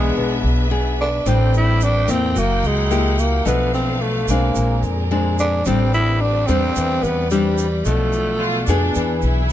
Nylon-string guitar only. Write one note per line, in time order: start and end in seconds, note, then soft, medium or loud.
0.00 0.14 E3 medium
0.00 0.67 B3 medium
0.00 0.67 D4 medium
0.00 0.68 G#4 medium
0.17 1.24 B2 medium
0.70 1.06 B3 soft
0.70 1.07 D4 medium
0.70 1.06 G#4 medium
1.26 2.33 A2 medium
1.26 2.04 G3 medium
1.26 2.04 C4 medium
1.26 2.05 D4 medium
2.08 2.86 A#3 medium
2.08 2.86 E4 medium
2.35 3.42 F#3 medium
2.90 3.41 A#3 medium
2.90 3.41 E4 medium
2.90 3.42 G4 medium
3.45 4.52 B2 medium
3.45 4.23 F3 medium
3.45 4.23 A3 medium
3.45 4.24 D4 medium
4.29 5.07 G#3 medium
4.29 5.07 C4 medium
4.29 5.07 D4 medium
4.56 5.63 A#2 medium
5.11 5.61 G#3 medium
5.11 5.61 C4 medium
5.11 5.61 D4 medium
5.66 6.73 A2 medium
5.66 6.44 G3 medium
5.66 6.44 C4 medium
5.66 6.44 D4 medium
6.48 7.26 G3 medium
6.48 7.26 C4 medium
6.48 7.26 D4 medium
6.77 7.83 E3 medium
7.31 7.66 G3 medium
7.31 7.66 C4 medium
7.31 7.66 D4 medium
7.86 8.93 B2 medium
7.86 8.63 F3 medium
7.86 8.63 A3 medium
7.86 8.64 D4 medium
8.68 9.46 B3 medium
8.68 9.46 D4 medium
8.68 9.46 G#4 medium
8.96 9.52 E3 medium